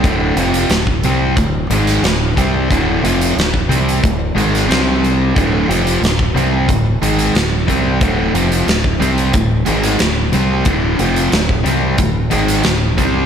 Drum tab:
HH |x-xxx-x-x-xxx-x-|x-xxx-xxx-xxx-x-|x-xxx-x-x-xxx-x-|x-xxx-xxx-xxx-x-|
SD |----o------oo---|----o------oo---|----o-------o---|----o------oo---|
BD |o----o--o-----o-|o----o--o-------|o----o--o-----o-|o----o--o-------|

HH |x-xxx-x-x-xxx-x-|
SD |----o------oo---|
BD |o----o--o-----o-|